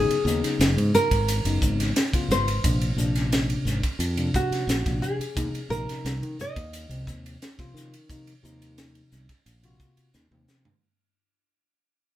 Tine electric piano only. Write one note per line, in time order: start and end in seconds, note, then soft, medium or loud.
0.00 0.15 C#3 medium
0.00 0.15 F#3 medium
0.00 0.15 B3 medium
0.00 0.15 D#4 medium
0.26 1.07 C#3 medium
0.26 1.07 F#3 medium
0.26 1.07 B3 medium
0.26 1.07 D#4 medium
1.45 1.91 C#3 medium
1.45 1.91 F#3 medium
1.45 1.92 B3 medium
1.45 1.92 D#4 medium
2.12 2.47 C#3 medium
2.12 2.48 F#3 medium
2.12 2.48 B3 medium
2.12 2.49 F4 medium
2.63 2.87 C3 medium
2.63 2.88 F3 medium
2.63 2.88 A#3 medium
2.63 2.88 D4 medium
2.96 3.78 C3 medium
2.96 3.78 F3 medium
2.96 3.79 A#3 medium
2.96 3.79 D4 medium
4.17 4.63 C3 medium
4.17 4.63 F3 medium
4.17 4.64 A#3 medium
4.17 4.64 D4 medium
4.85 5.20 C3 medium
4.85 5.20 F3 medium
4.85 5.21 A#3 medium
4.85 5.21 D4 medium
5.34 5.59 C3 medium
5.34 5.60 F3 medium
5.34 5.60 A#3 medium
5.34 5.60 D#4 medium
5.69 6.50 C3 medium
5.69 6.51 F3 medium
5.69 6.51 A#3 medium
5.69 6.51 D#4 medium
6.89 7.35 C3 medium
6.89 7.36 F3 medium
6.89 7.36 A#3 medium
6.89 7.37 C4 medium
7.58 7.93 C3 medium
7.58 7.93 F3 medium
7.58 7.93 A#3 medium
7.58 7.94 F4 medium
8.09 8.33 C3 medium
8.09 8.33 F3 medium
8.09 8.33 A#3 medium
8.09 8.33 D#4 medium
8.43 9.24 C3 medium
8.43 9.24 F3 medium
8.43 9.24 A#3 medium
8.43 9.25 D#4 medium
9.63 10.09 C3 medium
9.63 10.10 A#3 medium
9.63 10.09 F4 medium
9.63 10.10 F#4 medium
10.31 10.66 C3 medium
10.31 10.66 F3 medium
10.31 10.66 A#3 medium
10.31 10.67 C4 medium